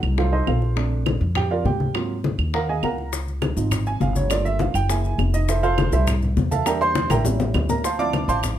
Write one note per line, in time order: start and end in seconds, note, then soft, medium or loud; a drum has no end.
0.00 0.44 C2 medium
0.00 0.16 F#3 medium
0.00 0.16 A3 medium
0.00 0.16 D#4 medium
0.00 high bongo soft
0.00 high conga soft
0.00 claves medium
0.17 0.31 F#3 soft
0.17 0.31 A3 soft
0.17 0.31 D#4 medium
0.17 0.32 F4 medium
0.17 0.32 A4 medium
0.17 0.31 C5 medium
0.17 0.32 F5 medium
0.17 high bongo medium
0.17 high conga soft
0.33 0.47 D#4 medium
0.33 0.47 A4 medium
0.33 0.47 C5 medium
0.33 0.47 D#5 medium
0.33 high conga soft
0.47 1.15 A#1 medium
0.47 0.75 F4 medium
0.47 0.75 A4 medium
0.47 0.75 C5 medium
0.47 0.75 F5 medium
0.47 high bongo soft
0.47 low bongo medium
0.47 high conga soft
0.47 claves medium
0.62 high bongo soft
0.62 high conga soft
0.76 1.18 A3 medium
0.76 1.19 C4 soft
0.76 1.19 D4 medium
0.76 high bongo medium
0.76 high conga soft
0.92 high conga soft
1.06 high bongo medium
1.06 high conga medium
1.06 claves medium
1.21 1.62 F2 medium
1.21 high bongo soft
1.21 high conga soft
1.35 1.51 G4 medium
1.35 1.50 G5 medium
1.35 high bongo medium
1.35 high conga soft
1.35 low conga medium
1.35 claves medium
1.51 1.65 F4 medium
1.51 1.65 A#4 medium
1.51 1.65 D5 medium
1.51 1.65 F5 medium
1.51 high conga soft
1.65 2.33 G#2 medium
1.65 1.93 G4 medium
1.65 1.93 G5 medium
1.65 high bongo soft
1.65 low bongo medium
1.65 high conga medium
1.80 high bongo soft
1.80 high conga medium
1.94 2.14 F#3 medium
1.94 2.14 A#3 soft
1.94 2.14 C4 medium
1.94 2.15 F4 medium
1.94 high bongo medium
1.94 high conga soft
1.94 claves medium
2.10 high conga soft
2.24 high bongo medium
2.24 high conga loud
2.38 2.80 D#2 medium
2.38 high bongo soft
2.38 high conga soft
2.38 claves medium
2.54 2.69 A#4 medium
2.54 2.68 F5 medium
2.54 2.68 F#5 medium
2.54 2.68 A#5 medium
2.54 high bongo medium
2.54 high conga soft
2.69 2.83 G#4 medium
2.69 2.83 D#5 medium
2.69 2.83 F5 medium
2.69 2.83 G#5 medium
2.69 high conga soft
2.83 3.51 C#2 medium
2.83 3.11 A#4 medium
2.83 3.11 F5 medium
2.83 3.11 F#5 medium
2.83 3.11 A#5 medium
2.83 high bongo soft
2.83 low bongo medium
2.83 high conga soft
2.83 claves medium
2.98 high bongo soft
2.98 high conga soft
3.13 high bongo medium
3.13 high conga soft
3.13 maracas loud
3.27 high conga soft
3.27 maracas soft
3.42 high bongo medium
3.42 high conga loud
3.42 claves medium
3.42 maracas soft
3.57 3.98 G#1 medium
3.57 4.27 F3 medium
3.57 4.27 C4 soft
3.57 4.27 D#4 medium
3.57 high bongo soft
3.57 high conga soft
3.57 maracas medium
3.71 high bongo medium
3.71 high conga soft
3.71 low conga medium
3.71 claves medium
3.71 maracas medium
3.86 4.01 G#5 loud
3.86 high conga soft
3.86 maracas soft
4.00 4.69 G1 medium
4.00 4.15 F5 medium
4.00 high bongo soft
4.00 low bongo medium
4.00 high conga medium
4.00 maracas soft
4.16 4.30 C#5 medium
4.16 high bongo soft
4.16 high conga medium
4.16 maracas medium
4.30 4.72 A3 medium
4.30 4.73 A#3 medium
4.30 4.73 F4 medium
4.30 4.45 D5 medium
4.30 high bongo medium
4.30 claves medium
4.30 maracas medium
4.45 4.59 E5 medium
4.45 high conga soft
4.45 maracas soft
4.59 4.74 F5 medium
4.59 high bongo medium
4.59 high conga loud
4.59 maracas soft
4.74 5.16 F#1 medium
4.74 4.89 G5 medium
4.74 high bongo soft
4.74 high conga soft
4.74 claves medium
4.74 maracas medium
4.89 5.45 G#3 medium
4.89 5.46 A#3 medium
4.89 5.46 E4 medium
4.89 5.17 G#5 medium
4.89 high bongo medium
4.89 high conga soft
4.89 maracas loud
5.04 high conga soft
5.04 maracas soft
5.18 5.87 F1 medium
5.18 high bongo soft
5.18 low bongo medium
5.18 high conga soft
5.18 claves medium
5.18 maracas soft
5.33 5.48 D#4 medium
5.33 5.48 D#5 medium
5.33 high bongo soft
5.33 high conga soft
5.33 maracas medium
5.48 5.63 E4 medium
5.48 5.62 A4 medium
5.48 5.62 C5 medium
5.48 5.63 E5 medium
5.48 high bongo medium
5.48 high conga soft
5.48 maracas loud
5.63 5.91 F4 medium
5.63 5.91 A4 medium
5.63 5.91 C5 medium
5.63 5.91 F5 loud
5.63 high conga soft
5.63 maracas soft
5.78 high bongo medium
5.78 high conga loud
5.78 claves medium
5.78 maracas soft
5.92 6.34 C2 loud
5.92 6.12 G3 medium
5.92 6.12 A3 medium
5.92 6.13 E4 medium
5.92 6.07 A4 medium
5.92 6.07 C5 medium
5.92 6.07 E5 medium
5.92 high bongo soft
5.92 maracas medium
6.07 high bongo medium
6.07 high conga soft
6.07 low conga medium
6.07 claves medium
6.07 maracas medium
6.22 high conga soft
6.22 low conga medium
6.22 maracas soft
6.37 7.05 E2 medium
6.37 high bongo soft
6.37 low bongo medium
6.37 high conga medium
6.37 maracas soft
6.51 6.66 A4 medium
6.51 6.65 E5 medium
6.51 6.66 F5 medium
6.51 6.66 A5 loud
6.51 high bongo soft
6.51 high conga medium
6.51 maracas medium
6.66 7.22 G3 medium
6.66 7.22 A#3 medium
6.66 7.23 D4 medium
6.66 6.81 A#4 medium
6.66 6.81 E5 medium
6.66 6.81 G5 medium
6.66 6.81 A#5 medium
6.66 high bongo medium
6.66 claves medium
6.66 maracas medium
6.81 7.09 C5 loud
6.81 7.09 C6 loud
6.81 high conga soft
6.81 maracas soft
6.95 high bongo medium
6.95 high conga medium
6.95 maracas soft
7.10 7.52 A1 loud
7.10 7.25 A#4 medium
7.10 7.25 E5 medium
7.10 7.25 G5 medium
7.10 7.25 A#5 loud
7.10 high bongo medium
7.10 high conga loud
7.10 claves medium
7.10 maracas medium
7.25 7.81 G3 medium
7.25 7.82 C#4 medium
7.25 7.82 E4 medium
7.25 low bongo medium
7.25 low conga medium
7.25 maracas medium
7.40 low bongo medium
7.40 low conga medium
7.40 maracas soft
7.54 8.23 D2 medium
7.54 low bongo medium
7.54 low conga loud
7.54 claves medium
7.54 maracas soft
7.69 7.84 A#4 medium
7.69 7.84 A#5 loud
7.69 low bongo loud
7.69 low conga medium
7.69 maracas medium
7.84 7.99 C5 medium
7.84 7.98 F5 medium
7.84 7.98 A5 medium
7.84 7.99 C6 medium
7.84 high bongo medium
7.84 high conga soft
7.84 maracas loud
7.98 8.59 F3 medium
7.98 8.59 C4 soft
7.98 8.59 E4 medium
7.98 8.27 D5 medium
7.98 8.27 F5 medium
7.98 8.27 A5 medium
7.98 8.27 D6 loud
7.98 high conga soft
7.98 maracas soft
8.13 high bongo medium
8.13 high conga loud
8.13 claves medium
8.13 maracas soft
8.28 8.59 A1 medium
8.28 8.38 C5 medium
8.28 8.38 F5 medium
8.28 8.38 A5 medium
8.28 8.38 C6 loud
8.28 high bongo soft
8.28 high conga soft
8.28 maracas medium
8.43 high bongo medium
8.43 high conga soft
8.43 low conga medium
8.43 claves medium
8.43 maracas medium